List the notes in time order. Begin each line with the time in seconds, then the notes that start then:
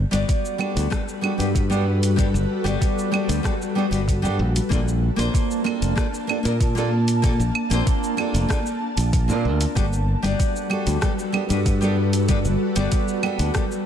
Already playing: G3 F#4 A4 B4
0.11 G1 G3 B3 D4 F#4 D5, open hi-hat, shaker
0.29 kick, open hi-hat, shaker
0.45 shaker
0.58 G3 B3 D4 F#4 A4, claves
0.77 D2, open hi-hat, shaker
0.90 G3 B3 D4 F#4 A4, kick, cross-stick, open hi-hat, shaker
1.08 shaker
1.21 G3 B3 D4 F#4 A4, claves
1.38 G2 G3 B3 D4 F#4 B4, open hi-hat, shaker
1.55 kick, open hi-hat, shaker
1.70 G3 B3 D4 F#4 A4, shaker
2.03 open hi-hat, shaker
2.16 G3 B3 D4 F#4 A4, kick, open hi-hat, shaker
2.34 G1, shaker
2.64 G1 G3 B3 D4 F#4 D5, open hi-hat, shaker
2.81 kick, open hi-hat, shaker
2.98 shaker
3.12 G3 B3 D4 F#4 A4, claves
3.29 D2, open hi-hat, shaker
3.43 G3 B3 D4 F#4 A4, kick, cross-stick, open hi-hat, shaker
3.62 shaker
3.75 G3 B3 D4 F#4 A4
3.91 G1 G3 B3 D4 F#4 B4, open hi-hat, shaker
4.08 kick, open hi-hat, shaker
4.22 G2 G3 B3 D4 F#4 A4, shaker
4.39 A#1 A#3 D4 A5
4.56 open hi-hat, shaker
4.69 A#1 A#3 C4 D4 F4 A4, kick, open hi-hat, shaker
4.88 shaker
5.16 A#1 A#3 C4 D4 F4 C5, open hi-hat, shaker
5.34 kick, open hi-hat, shaker
5.51 shaker
5.64 A#3 C4 D4 F4 A4, claves
5.82 F1, open hi-hat, shaker
5.95 A#3 C4 D4 F4 A4, kick, cross-stick, open hi-hat, shaker
6.14 shaker
6.27 A#3 C4 D4 F4 A4, claves
6.43 A#2 A#3 C4 D4 F4 A#4, open hi-hat, shaker
6.60 kick, open hi-hat, shaker
6.75 A#3 C4 D4 F4 A4, shaker
7.08 open hi-hat, shaker
7.22 A#3 C4 D4 F4 A4, kick, open hi-hat, shaker
7.40 A#1, shaker
7.55 claves
7.70 A#1 A#3 C4 D4 F4 C5, open hi-hat, shaker
7.87 kick, open hi-hat, shaker
8.03 shaker
8.17 A#3 C4 D4 F4 A4, claves
8.34 F1, open hi-hat, shaker
8.49 A#3 C4 D4 F4 A4, kick, cross-stick, open hi-hat, shaker
8.66 shaker
8.97 A#1, open hi-hat, shaker
9.13 kick, open hi-hat, shaker
9.28 A#2 A#3 C4 D4 F4 A#4, shaker
9.45 D2
9.61 open hi-hat, shaker
9.75 G1 G3 B3 D4 F#4 A4 B4, kick, open hi-hat, shaker
9.93 shaker
10.22 G1 G3 B3 D4 F#4 D5, open hi-hat, shaker
10.39 kick, open hi-hat, shaker
10.56 shaker
10.70 G3 B3 D4 F#4 A4, claves
10.87 D2, open hi-hat, shaker
11.01 G3 B3 D4 F#4 A4, kick, cross-stick, open hi-hat, shaker
11.19 shaker
11.32 G3 B3 D4 F#4 A4, claves
11.49 G2 G3 B3 D4 F#4 B4, open hi-hat, shaker
11.66 kick, open hi-hat, shaker
11.81 G3 B3 D4 F#4 A4, shaker
12.13 open hi-hat, shaker
12.28 G3 B3 D4 F#4 A4, kick, open hi-hat, shaker
12.45 G1, shaker
12.75 G1 G3 B3 D4 F#4 D5, open hi-hat, shaker
12.92 kick, open hi-hat, shaker
13.08 shaker
13.23 G3 B3 D4 F#4 A4, claves
13.39 D2, open hi-hat, shaker
13.54 G3 B3 D4 F#4 A4, kick, cross-stick, open hi-hat, shaker
13.71 shaker